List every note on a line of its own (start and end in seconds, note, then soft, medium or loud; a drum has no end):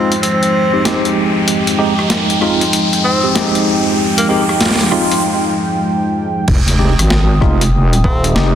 0.00 6.43 F3 medium
0.00 0.13 G#3 medium
0.00 6.43 G#3 medium
0.00 0.13 C4 medium
0.00 0.15 C4 medium
0.00 0.13 D#4 medium
0.00 6.43 D#4 medium
0.00 0.13 F4 loud
0.00 6.43 G5 medium
0.00 riser medium
0.12 closed hi-hat medium
0.22 1.12 C4 medium
0.22 closed hi-hat medium
0.43 closed hi-hat soft
0.73 0.82 G#3 medium
0.73 0.82 C4 medium
0.73 0.82 D#4 medium
0.73 0.82 G4 medium
0.85 1.76 G#3 medium
0.85 1.76 C4 medium
0.85 1.76 D#4 medium
0.85 1.76 G4 medium
0.85 snare loud
0.85 closed hi-hat medium
1.05 closed hi-hat soft
1.48 closed hi-hat medium
1.67 closed hi-hat medium
1.79 1.93 G#3 medium
1.79 1.93 C4 medium
1.79 1.93 D#4 medium
1.79 1.93 G4 loud
1.99 cross-stick medium
2.10 snare loud
2.10 closed hi-hat medium
2.30 closed hi-hat soft
2.41 2.63 G#3 loud
2.41 2.63 C4 medium
2.41 2.63 D#4 medium
2.41 2.63 F4 loud
2.41 cross-stick medium
2.61 closed hi-hat medium
2.73 closed hi-hat medium
2.93 closed hi-hat soft
3.04 3.28 C4 medium
3.23 3.32 G#3 medium
3.23 3.32 C4 medium
3.23 3.32 D#4 medium
3.23 3.32 G4 medium
3.35 4.26 G#3 medium
3.35 4.26 C4 medium
3.35 4.26 D#4 medium
3.35 4.26 G4 medium
3.35 snare loud
3.35 closed hi-hat medium
3.55 closed hi-hat soft
4.18 4.25 A#3 medium
4.18 closed hi-hat medium
4.29 4.43 G#3 medium
4.29 4.42 A#3 medium
4.29 4.43 C4 medium
4.29 4.43 D#4 medium
4.29 4.43 G4 loud
4.49 cross-stick medium
4.61 snare loud
4.61 closed hi-hat medium
4.66 snare loud
4.71 snare medium
4.76 snare medium
4.81 snare medium
4.81 closed hi-hat soft
4.83 snare soft
4.86 snare soft
4.89 5.13 G#3 loud
4.89 5.13 C4 medium
4.89 5.13 D#4 medium
4.89 5.13 F4 loud
4.89 cross-stick soft
4.89 snare soft
5.12 closed hi-hat medium
6.48 6.96 F1 loud
6.48 8.55 G#3 medium
6.48 8.55 G5 medium
6.48 8.55 D#6 medium
6.48 kick loud
6.48 crash loud
6.48 sub drop medium
6.68 closed hi-hat medium
6.79 6.93 G#3 medium
6.79 6.93 C4 medium
6.79 6.93 D#4 medium
6.79 6.93 G4 loud
6.98 7.40 G#1 loud
6.98 cross-stick medium
6.98 closed hi-hat medium
7.10 snare loud
7.41 7.85 F1 medium
7.41 7.63 G#3 medium
7.41 7.63 C4 medium
7.41 7.63 D#4 medium
7.41 7.63 F4 loud
7.41 kick medium
7.41 cross-stick medium
7.61 closed hi-hat medium
7.85 8.02 E1 medium
7.93 closed hi-hat soft
8.04 8.34 D#1 medium
8.04 8.28 C4 loud
8.04 kick loud
8.24 8.32 G#3 medium
8.24 8.32 C4 medium
8.24 8.32 D#4 medium
8.24 8.32 G4 medium
8.24 closed hi-hat medium
8.35 8.55 F1 loud
8.35 8.55 G#3 medium
8.35 8.55 C4 medium
8.35 8.55 D#4 medium
8.35 8.55 G4 medium
8.35 snare loud